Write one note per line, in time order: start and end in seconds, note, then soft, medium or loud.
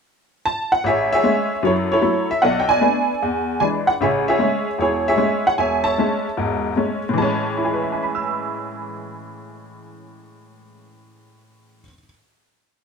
0.45 0.69 A5 loud
0.72 0.85 F#5 medium
0.84 1.18 A1 medium
0.84 1.13 G#4 soft
0.84 1.11 E5 medium
0.88 1.13 C#5 medium
1.13 1.62 G#4 medium
1.13 1.62 C#5 medium
1.13 1.61 E5 medium
1.23 1.51 G#3 medium
1.23 1.51 A3 medium
1.23 1.51 C#4 medium
1.63 1.97 F#2 medium
1.63 1.98 F#3 medium
1.63 1.92 A4 soft
1.63 1.71 C#5 medium
1.67 1.92 E4 medium
1.92 2.01 E4 medium
1.92 2.41 A4 medium
1.92 2.28 C#5 medium
2.01 2.30 F#3 medium
2.01 2.30 A3 soft
2.01 2.30 E4 medium
2.31 2.42 E5 medium
2.42 2.77 B1 medium
2.42 3.19 A4 medium
2.42 2.69 D5 medium
2.42 2.60 F#5 medium
2.60 2.69 G5 medium
2.69 3.58 D5 medium
2.69 3.59 G#5 medium
2.81 3.09 A3 medium
2.81 3.09 B3 soft
2.81 3.10 D4 medium
3.22 3.56 E2 medium
3.60 3.88 E3 soft
3.60 3.89 G#3 soft
3.60 3.89 D4 medium
3.60 3.66 G#5 medium
3.87 3.92 F#5 medium
4.01 4.35 A1 medium
4.01 4.35 C#3 medium
4.01 4.28 G#4 medium
4.01 4.28 C#5 medium
4.01 4.08 E5 medium
4.28 4.80 G#4 medium
4.28 4.79 C#5 medium
4.28 4.77 E5 medium
4.39 4.67 G#3 medium
4.39 4.67 A3 soft
4.39 4.68 C#4 medium
4.78 5.13 E1 medium
4.78 5.56 E4 soft
4.78 5.08 G#4 medium
4.78 5.07 C#5 medium
5.08 5.83 G#4 medium
5.08 5.58 C#5 medium
5.08 5.44 E5 medium
5.17 5.45 G#3 medium
5.17 5.46 A3 soft
5.17 5.46 C#4 medium
5.47 5.52 F#5 medium
5.58 5.92 E1 medium
5.58 5.84 C#5 medium
5.58 5.83 E5 medium
5.58 5.83 G#5 medium
5.84 7.00 C#5 medium
5.84 6.99 E5 medium
5.84 6.99 A5 medium
5.98 6.26 G#3 medium
5.98 6.26 A3 medium
5.98 6.26 C#4 medium
6.37 6.72 E1 medium
6.37 6.72 G#2 medium
6.76 7.04 G#3 soft
6.76 7.05 A3 soft
6.76 7.05 C#4 medium
7.09 11.80 A2 medium
7.13 11.83 E3 medium
7.17 11.85 G#3 medium
7.17 11.81 A5 medium
7.22 11.87 C#4 medium
7.58 11.81 E4 soft
7.65 11.84 G#4 soft
7.73 11.88 B4 soft
7.82 11.93 E5 soft
7.92 11.98 G#5 soft
8.03 12.03 B5 soft
8.15 12.09 E6 soft